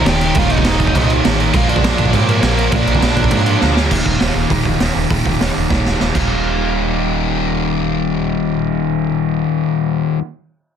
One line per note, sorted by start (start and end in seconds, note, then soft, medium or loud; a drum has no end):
0.00 0.20 D#2 loud
0.00 0.21 A#2 loud
0.00 0.20 D#3 loud
0.04 0.33 D#1 loud
0.04 0.34 D#2 loud
0.04 0.34 A#2 loud
0.04 0.34 D#3 loud
0.04 0.34 G4 medium
0.04 snare loud
0.04 crash loud
0.09 0.38 G5 loud
0.21 0.36 A#2 medium
0.21 0.35 D#3 medium
0.21 crash medium
0.25 0.34 D#2 medium
0.35 0.49 D#1 loud
0.35 0.64 D#2 loud
0.35 1.38 D#2 medium
0.35 0.64 A#2 loud
0.35 1.38 A#2 loud
0.35 0.63 D#3 loud
0.35 0.50 F4 medium
0.35 0.51 F5 loud
0.35 kick loud
0.35 crash loud
0.39 1.36 D#3 loud
0.50 0.64 D#1 medium
0.50 1.06 D#4 medium
0.50 1.10 D#5 medium
0.50 crash medium
0.58 kick medium
0.64 0.79 D#1 loud
0.64 0.92 D#2 medium
0.64 0.92 A#2 loud
0.64 0.93 D#3 loud
0.64 snare loud
0.64 crash loud
0.80 0.94 D#1 medium
0.80 kick medium
0.80 crash medium
0.87 kick medium
0.93 1.22 C2 loud
0.93 1.23 D#2 medium
0.93 1.23 A#2 loud
0.93 1.22 D#3 loud
0.93 kick loud
0.93 crash loud
1.10 crash medium
1.23 1.52 A1 medium
1.23 1.53 D#2 loud
1.23 1.52 A#2 loud
1.23 1.53 D#3 loud
1.23 snare loud
1.23 crash loud
1.38 1.52 A#2 medium
1.38 1.52 D#3 loud
1.38 crash medium
1.42 1.55 D#2 medium
1.53 1.68 A#1 loud
1.53 1.85 A#2 loud
1.53 2.57 A#2 loud
1.53 1.85 F3 loud
1.53 2.58 F3 loud
1.53 1.84 A#3 loud
1.53 2.57 A#3 loud
1.53 1.68 F4 medium
1.53 1.69 F5 loud
1.53 kick loud
1.53 crash loud
1.68 1.83 A#1 loud
1.68 2.10 D4 medium
1.68 2.15 D5 loud
1.68 crash medium
1.76 kick loud
1.84 1.97 A#1 loud
1.84 2.11 A#2 medium
1.84 2.12 F3 loud
1.84 2.13 A#3 loud
1.84 snare loud
1.84 crash loud
1.98 2.12 A#1 medium
1.98 kick medium
1.98 crash medium
2.06 kick medium
2.12 2.40 G#2 loud
2.12 2.41 A#2 medium
2.12 2.41 F3 loud
2.12 2.42 A#3 medium
2.12 2.28 C4 medium
2.12 2.30 C5 medium
2.12 kick loud
2.12 crash medium
2.29 2.42 A#3 medium
2.29 2.43 A#4 medium
2.29 crash medium
2.42 2.70 A#1 medium
2.42 2.69 A#2 medium
2.42 2.70 F3 loud
2.42 2.70 A#3 loud
2.42 2.71 A#3 medium
2.42 2.74 A#4 medium
2.42 snare loud
2.42 crash loud
2.57 2.70 A#2 medium
2.57 2.73 F3 medium
2.57 2.75 A#3 loud
2.57 crash medium
2.70 2.86 A#1 loud
2.70 3.00 A#2 loud
2.70 3.75 A#2 medium
2.70 2.99 F3 loud
2.70 3.76 F3 loud
2.70 2.99 A#3 loud
2.70 kick loud
2.70 crash loud
2.75 3.75 A#3 loud
2.75 3.74 D4 medium
2.75 3.74 D5 medium
2.87 3.01 A#1 medium
2.87 crash medium
2.95 kick medium
3.00 3.16 A#1 loud
3.00 3.29 A#2 medium
3.00 3.29 F3 medium
3.00 3.30 A#3 loud
3.00 snare loud
3.00 crash medium
3.17 3.30 A#1 medium
3.17 kick medium
3.17 crash medium
3.24 kick loud
3.30 3.58 G#2 loud
3.30 3.60 A#2 medium
3.30 3.60 F3 loud
3.30 3.59 A#3 loud
3.30 kick loud
3.30 crash loud
3.46 crash medium
3.60 3.89 D2 medium
3.60 3.89 A#2 medium
3.60 3.90 F3 medium
3.60 3.90 A#3 loud
3.60 snare medium
3.76 3.91 F3 medium
3.76 3.90 A#3 medium
3.76 snare loud
3.80 3.92 A#2 medium
3.90 4.01 D#1 loud
3.90 4.19 D#2 loud
3.90 4.19 A#2 loud
3.90 4.19 D#3 loud
3.90 kick loud
3.90 crash loud
4.06 4.16 D#1 medium
4.06 kick medium
4.19 4.31 D#1 medium
4.19 4.50 D#2 medium
4.19 4.49 A#2 medium
4.19 4.51 D#3 loud
4.19 snare loud
4.19 open hi-hat medium
4.36 4.46 D#1 medium
4.50 4.61 D#1 loud
4.50 4.80 D#2 loud
4.50 4.80 A#2 loud
4.50 4.80 D#3 loud
4.50 kick loud
4.50 open hi-hat medium
4.65 4.75 D#1 loud
4.65 kick medium
4.80 4.91 D#1 loud
4.80 5.09 D#2 medium
4.80 5.09 A#2 medium
4.80 5.10 D#3 loud
4.80 snare loud
4.80 open hi-hat medium
4.96 5.06 D#1 medium
5.10 5.21 D#1 loud
5.10 5.41 D#2 loud
5.10 5.41 A#2 medium
5.10 5.40 D#3 loud
5.10 kick loud
5.10 open hi-hat medium
5.26 5.35 D#1 medium
5.26 kick medium
5.41 5.51 D#1 medium
5.41 5.70 D#2 medium
5.41 5.71 A#2 loud
5.41 5.71 D#3 loud
5.41 snare loud
5.41 open hi-hat medium
5.57 5.67 D#1 medium
5.70 5.80 D#1 medium
5.70 6.00 D#2 loud
5.70 6.00 A#2 medium
5.70 6.00 D#3 loud
5.70 kick loud
5.70 snare medium
5.86 5.96 D#1 loud
5.86 snare medium
6.00 6.11 D#1 medium
6.00 6.13 D#2 medium
6.00 6.14 A#2 medium
6.00 6.15 D#3 loud
6.00 snare medium
6.14 9.45 D#1 loud
6.14 10.18 D#2 medium
6.14 10.18 A#2 medium
6.14 10.19 D#3 medium
6.14 10.19 G3 medium
6.14 10.20 A#3 medium
6.14 10.20 D#4 loud
6.14 kick medium
6.14 crash medium